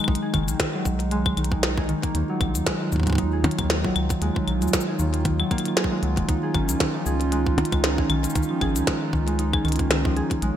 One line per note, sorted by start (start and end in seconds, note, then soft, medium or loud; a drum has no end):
0.00 0.33 D#3 medium
0.00 0.39 G#3 medium
0.00 2.11 G#3 medium
0.00 0.48 A#3 medium
0.00 6.25 D#4 medium
0.00 0.22 G#4 medium
0.04 0.17 B1 loud
0.04 1.63 D#4 medium
0.04 kick loud
0.04 claves medium
0.15 closed hi-hat medium
0.22 1.77 G#4 medium
0.34 0.50 F#1 medium
0.34 0.58 D#3 loud
0.34 kick loud
0.34 closed hi-hat soft
0.34 claves medium
0.48 0.55 B1 medium
0.48 2.03 A#3 medium
0.48 closed hi-hat medium
0.48 cabasa medium
0.60 1.36 D#3 medium
0.60 kick loud
0.60 snare loud
0.60 closed hi-hat medium
0.74 1.42 F#3 medium
0.85 1.30 B1 medium
0.85 kick loud
0.85 cabasa medium
1.00 closed hi-hat medium
1.11 1.42 G#3 loud
1.11 closed hi-hat medium
1.26 kick loud
1.26 claves medium
1.37 1.94 B1 medium
1.37 1.88 D#3 medium
1.37 closed hi-hat medium
1.37 claves soft
1.44 closed hi-hat medium
1.52 1.94 G#3 medium
1.52 kick loud
1.63 3.18 D#4 medium
1.63 snare loud
1.63 closed hi-hat medium
1.77 3.32 G#4 medium
1.77 kick loud
1.89 2.14 D#3 loud
1.89 closed hi-hat soft
2.03 3.58 A#3 medium
2.03 kick loud
2.03 closed hi-hat medium
2.15 2.24 D#2 loud
2.15 2.91 D#3 medium
2.15 6.25 F#3 medium
2.15 10.38 F4 medium
2.15 closed hi-hat medium
2.29 2.97 F#3 medium
2.41 2.57 A#1 medium
2.41 kick loud
2.41 closed hi-hat soft
2.41 claves soft
2.55 2.62 D#2 medium
2.55 closed hi-hat medium
2.55 cabasa medium
2.66 2.97 G#3 loud
2.66 kick loud
2.66 snare loud
2.66 closed hi-hat medium
2.92 3.49 D#2 medium
2.92 3.43 D#3 medium
2.92 kick medium
2.92 cabasa medium
2.96 kick medium
3.00 kick medium
3.03 kick medium
3.07 3.49 G#3 medium
3.07 kick medium
3.07 closed hi-hat medium
3.10 kick loud
3.13 kick loud
3.15 kick loud
3.18 4.73 D#4 medium
3.18 kick loud
3.18 closed hi-hat medium
3.33 4.87 G#4 medium
3.44 3.69 D#3 loud
3.44 closed hi-hat soft
3.44 percussion blips medium
3.51 closed hi-hat medium
3.59 3.89 D#2 medium
3.59 5.13 A#3 medium
3.59 kick loud
3.59 closed hi-hat medium
3.59 claves medium
3.70 4.46 D#3 medium
3.70 snare loud
3.70 closed hi-hat medium
3.84 4.53 F#3 medium
3.84 kick loud
3.96 4.13 C#2 loud
3.96 closed hi-hat soft
3.96 claves medium
4.10 kick loud
4.10 closed hi-hat medium
4.10 cabasa medium
4.22 4.30 D#2 loud
4.22 4.53 G#3 loud
4.22 closed hi-hat medium
4.36 kick loud
4.48 4.64 A#1 medium
4.48 4.98 D#3 medium
4.48 closed hi-hat soft
4.48 claves soft
4.62 4.69 D#2 medium
4.62 5.04 G#3 medium
4.62 closed hi-hat medium
4.62 cabasa soft
4.68 cabasa soft
4.73 6.28 D#4 medium
4.73 kick loud
4.73 snare loud
4.73 closed hi-hat medium
4.73 cabasa medium
4.81 cabasa medium
4.88 5.76 G#4 medium
4.99 5.44 D#2 medium
4.99 5.24 D#3 loud
4.99 cabasa medium
5.14 5.51 A#3 medium
5.14 closed hi-hat medium
5.25 5.64 D#3 medium
5.25 kick loud
5.25 closed hi-hat medium
5.40 5.69 F#3 medium
5.40 claves medium
5.51 6.69 A#3 loud
5.51 kick loud
5.51 closed hi-hat soft
5.51 claves soft
5.58 closed hi-hat medium
5.58 claves soft
5.65 6.34 D#3 medium
5.65 closed hi-hat medium
5.65 claves soft
5.77 6.43 G#4 medium
5.77 snare loud
5.77 closed hi-hat medium
5.84 kick loud
5.91 6.16 G#3 medium
6.03 6.19 C#2 loud
6.03 6.34 F#3 medium
6.03 closed hi-hat soft
6.17 6.24 D#1 loud
6.17 6.34 G#3 medium
6.17 kick loud
6.17 closed hi-hat medium
6.29 6.37 C#2 loud
6.29 10.38 C#4 medium
6.29 7.83 D#4 medium
6.29 10.38 D#4 medium
6.29 kick loud
6.29 closed hi-hat medium
6.43 7.06 G#4 medium
6.54 6.71 G#1 medium
6.54 6.79 D#3 loud
6.54 kick loud
6.54 closed hi-hat soft
6.54 claves soft
6.69 6.76 C#2 medium
6.69 8.24 A#3 medium
6.69 closed hi-hat soft
6.69 cabasa medium
6.80 7.57 D#3 medium
6.80 kick loud
6.80 snare loud
6.80 closed hi-hat medium
6.95 7.63 F3 medium
7.06 7.63 C#2 medium
7.06 7.98 G#4 loud
7.06 cabasa medium
7.21 closed hi-hat medium
7.32 7.63 G#3 loud
7.32 closed hi-hat medium
7.47 kick loud
7.58 8.08 D#3 medium
7.58 closed hi-hat soft
7.58 percussion blips loud
7.65 closed hi-hat medium
7.72 8.02 C#2 medium
7.72 8.15 G#3 medium
7.72 kick loud
7.72 closed hi-hat medium
7.72 claves soft
7.84 9.38 D#4 medium
7.84 snare loud
7.84 closed hi-hat medium
7.98 8.61 G#4 medium
7.98 kick loud
8.10 8.27 B1 loud
8.10 8.34 D#3 loud
8.10 closed hi-hat soft
8.10 claves medium
8.24 9.79 A#3 medium
8.24 closed hi-hat medium
8.24 cabasa medium
8.30 cabasa medium
8.35 8.44 C#2 loud
8.35 9.12 D#3 medium
8.35 kick loud
8.35 closed hi-hat medium
8.35 cabasa soft
8.43 cabasa soft
8.50 9.18 F3 medium
8.61 8.77 G#1 medium
8.61 9.53 G#4 loud
8.61 kick loud
8.61 closed hi-hat soft
8.61 claves medium
8.76 8.83 C#2 medium
8.76 closed hi-hat medium
8.76 cabasa medium
8.87 9.18 G#3 loud
8.87 kick loud
8.87 snare loud
8.87 closed hi-hat medium
9.13 9.58 C#2 medium
9.13 9.64 D#3 medium
9.13 kick loud
9.28 9.70 G#3 medium
9.28 closed hi-hat medium
9.39 10.57 D#4 medium
9.39 closed hi-hat medium
9.53 10.16 G#4 medium
9.53 kick loud
9.53 claves medium
9.65 10.22 C#2 medium
9.65 9.89 D#3 loud
9.65 closed hi-hat soft
9.65 claves soft
9.68 closed hi-hat soft
9.72 closed hi-hat medium
9.76 10.57 A#3 medium
9.76 kick loud
9.76 closed hi-hat soft
9.79 closed hi-hat medium
9.91 10.47 D#3 medium
9.91 snare loud
10.05 10.47 F3 medium
10.05 kick loud
10.16 10.57 G#4 loud
10.16 closed hi-hat soft
10.31 kick loud
10.31 closed hi-hat medium
10.42 10.51 A#1 loud
10.42 10.57 G#3 loud
10.42 10.57 A#3 medium
10.42 10.57 G#4 medium
10.42 10.57 C#5 medium
10.42 closed hi-hat medium